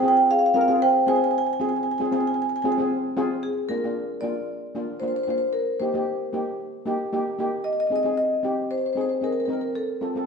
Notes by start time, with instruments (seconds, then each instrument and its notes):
0.00 steel pan C4 F4 G#4, marimba G5
0.08 marimba G5
0.17 marimba G5
0.31 marimba G#4 F5
0.39 marimba F5
0.46 marimba F5
0.54 steel pan C4 F4 A#4, marimba F5
0.61 marimba F5
0.68 steel pan C4 F4 G#4, marimba F5
0.82 marimba C5 G5
1.07 steel pan C4 F4 G#4, marimba C5 G#5
1.16 marimba G#5
1.24 marimba G#5
1.31 marimba G#5
1.38 marimba G#5
1.46 marimba G#5
1.53 marimba G#5
1.60 steel pan C4 F4 G#4, marimba G#5
1.69 marimba G#5
1.76 marimba G#5
1.83 marimba G#5
1.91 marimba G#5
1.98 steel pan C4 F4 G#4, marimba G#5
2.05 marimba G#5
2.12 steel pan C4 F4 G#4, marimba G#5
2.21 marimba G#5
2.27 marimba G#5
2.34 marimba G#5
2.42 marimba G#5
2.49 marimba G#5
2.56 marimba G#5
2.62 steel pan C4 F4 G#4, marimba G#5
2.72 marimba G#5
2.78 steel pan C4 F4 G#4
3.17 steel pan C4 F4 G#4
3.43 marimba G#4
3.69 steel pan A#3 D4 F4, marimba A#4
3.84 steel pan A#3 D4 F4
4.21 steel pan A#3 D4 F4, marimba D5
4.75 steel pan A#3 D4 F4
5.00 steel pan A#3 D4 F4, marimba C5
5.08 marimba C5
5.16 marimba C5
5.23 steel pan A#3, marimba C5
5.28 steel pan D4 F4, marimba C5
5.38 marimba C5
5.53 marimba A#4
5.80 steel pan A#3 D#4 G4, marimba C5
5.94 steel pan A#3 D#4 G4
6.33 steel pan A#3 D#4 G4
6.86 steel pan A#3 D#4 G4
7.13 steel pan A#3 D#4 G4
7.38 steel pan A#3 D#4 G4
7.64 marimba D#5
7.73 marimba D#5
7.80 marimba D#5
7.87 steel pan C4, marimba D#5
7.91 steel pan D#4 G#4
7.96 marimba D#5
8.03 steel pan C4 D#4 G#4, marimba D#5
8.17 marimba D#5
8.43 steel pan C4 D#4 G4
8.71 marimba C5
8.78 marimba C5
8.86 marimba C5
8.93 steel pan C4, marimba C5
8.97 steel pan D#4 G#4
9.01 marimba C5
9.09 marimba C5
9.21 steel pan C4 D#4 G#4, marimba A#4
9.32 marimba A#4
9.40 marimba A#4
9.46 steel pan C4 D#4 A#4, marimba A#4
9.53 marimba A#4
9.61 marimba A#4
9.75 marimba A4
10.01 steel pan C4 F4 A4
10.15 steel pan C4 F4 A4